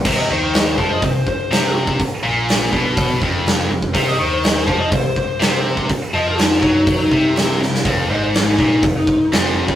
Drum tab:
CC |x---------------|----------------|----------------|----------------|
HH |----o---o---o---|o---o---o---o---|o---o---o---o---|o---o---o---o---|
SD |----o-------o---|----o-------o---|----oo------o---|----oo------o-oo|
BD |o-----o-o-o----o|o-----o-o-o----o|o-----o-o-o----o|o-----o-o-o-----|

CC |----------------|
HH |o---o---o---o---|
SD |----o-------o---|
BD |o-----o-o-o----o|